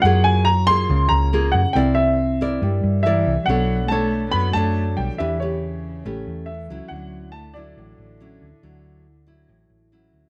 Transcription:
<<
  \new Staff \with { instrumentName = "Grand piano" } { \time 4/4 \key d \major \tempo 4 = 140 fis''8 gis''8 ais''8 c'''4 ais''4 fis''8 | g''8 e''2~ e''8 e''4 | fis''4 a''4 b''8 a''4 g''8 | e''8 cis''2~ cis''8 e''4 |
fis''4 a''8 d''2~ d''8~ | d''2. r4 | }
  \new Staff \with { instrumentName = "Nylon-string guitar" } { \time 4/4 \key d \major << { <ais eis' gis'>4 r8 <ais eis' gis'>4. <ais eis' gis'>8 r8 | <e' bes' d''>4 r8 <e' bes' d''>4. <e' bes' d''>8 r8 | <d' a' cis''>4 <d' a' cis''>4. <d' a' cis''>4. | <d' g' b'>8 <g' b'>4. <cis' g' b'>4 r8 <fis cis' e'>8~ |
<fis cis' e'>4 r8 <fis e'>4. <fis cis' e'>8 r8 | <fis e'>4 r8 <fis e'>4. <fis cis' e'>4 | } \\ { fis2 cis2 | c'2 g2 | b2 fis2 | e2 a2 |
d2 a,2 | d2 a,2 | } >> }
  \new Staff \with { instrumentName = "Cello" } { \clef bass \time 4/4 \key d \major r1 | r2. e4 | fis4 a4 b8 a4 g8 | e8 cis2~ cis8 e4 |
fis4 a8 d2~ d8~ | d2. r4 | }
  \new Staff \with { instrumentName = "Fingered electric bass" } { \clef bass \time 4/4 \key d \major fis,2 cis,8 cis,4 fis,16 r16 | c,2 g,8 g,4 c,16 r16 | b,,2 fis,8 fis,4 b,,16 r16 | e,2 a,,8 e,4 cis,16 r16 |
d,2 a,,8 a,,4 d,16 r16 | d,2 a,,8 a,,4 d,16 r16 | }
>>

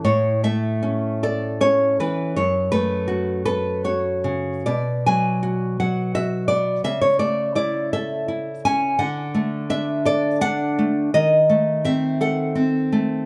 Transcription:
\new Staff \with { instrumentName = "Nylon-string guitar" } { \time 6/8 \key a \major \tempo 4. = 55 << { cis''8 e''4 d''8 cis''8 b'8 | cis''8 b'4 b'8 cis''4 | d''8 gis''4 fis''8 e''8 d''8 | e''16 cis''16 d''8 d''8 e''4 gis''8 |
fis''4 e''8 d''8 fis''4 | dis''4 e''8 fis''8 r4 | } \\ { a,8 a8 cis'8 a'8 cis'8 e8 | fis,8 a8 fis'8 a'8 fis'8 cis8 | b,8 fis8 fis'8 fis8 fis'8 b8 | cis8 a8 e'8 a'8 e'8 cis'8 |
d8 a8 d'8 a'8 d'8 a8 | dis8 a8 bis8 a'8 bis8 a8 | } >> }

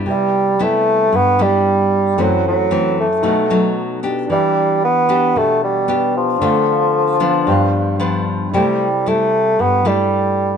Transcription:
<<
  \new Staff \with { instrumentName = "Grand piano" } { \time 4/4 \key c \lydian \tempo 4 = 113 << { r1 | r1 | r1 | r4. f''8 g''4 b''4 |
r1 | } \\ { <g' b' e''>1 | <e' a' c'' fis''>2 <dis' a' b' fis''>2 | <d' g' b' e''>1 | <d' a' c'' f''>2 <d' g' b' f''>2 |
<e' a' c'' g''>1 | } >> }
  \new Staff \with { instrumentName = "Nylon-string guitar" } { \time 4/4 \key c \lydian << { <g b e'>4 <g b e'>4 r8 <g b e'>4. | <e a c'>4 <e a c'>8 r8 <fis a dis'>8 <fis a dis'>4 <b d' g'>8~ | <b d' g'>4 r8 <b d' g'>4. <b d' g'>4 | <a c' f'>4. <f b d'>4. <f b d'>4 |
<g a e'>8 r8 <g a e'>4. <g a e'>4. | } \\ { c2 g,2 | fis,2 b,2 | e2 b,2 | d2 g,2 |
c2 g,2 | } >> }
  \new Staff \with { instrumentName = "Bassoon" } { \clef bass \time 4/4 \key c \lydian g4 a4 b8 g4. | fis8 fis4 a4. r4 | g4 b4 a8 g4 f8~ | f2.~ f8 r8 |
g4 a4 b8 g4. | }
>>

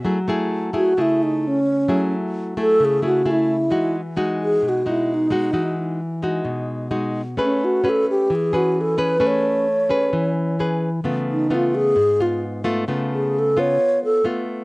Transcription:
<<
  \new Staff \with { instrumentName = "Alto flute" } { \time 4/4 \key fis \dorian \tempo 4 = 131 r4. fis'8 e'8 dis'8 cis'4~ | cis'8 r4 a'8 gis'8 fis'8 e'4~ | e'8 r4 gis'8 fis'8 e'8 dis'4~ | dis'8 r2. r8 |
cis'8 fis'8 a'8 g'8 gis'8 fis'8 a'8 b'8 | cis''2. r4 | r8 dis'8 eis'8 gis'4 eis'8 r4 | r8 gis'8 a'8 cis''4 a'8 r4 | }
  \new Staff \with { instrumentName = "Nylon-string guitar" } { \time 4/4 \key fis \dorian << { <a e' gis'>8 <a e' gis'>4 <a e' gis'>8 <a e' gis'>4. r8 | <a e' gis'>4. <a e' gis'>4 <a e' gis'>8 <a e' gis'>8 r8 | <gis dis' fis'>8 r8 <gis dis' fis'>4. <gis dis' fis'>4 <gis dis' fis'>8 | <gis dis' fis'>4 r8 <gis dis' fis'>4. <gis dis' fis'>8 r8 |
<cis' gis' b'>4 <cis' gis' b'>4 r8 <cis' gis' b'>4 <cis' gis' b'>8 | <cis' gis' b'>4 r8 <cis' gis' b'>4. <cis' gis' b'>8 r8 | <a b eis'>4 <a b eis'>4 r8 <b eis'>4 <a b eis'>8 | <a b eis'>4. <b eis'>4. <a b eis'>4 | } \\ { fis2 cis2 | fis2 cis2 | e2 b,2 | e2 b,2 |
a2 e2 | a2 e2 | cis2 gis,2 | cis2 r2 | } >> }
>>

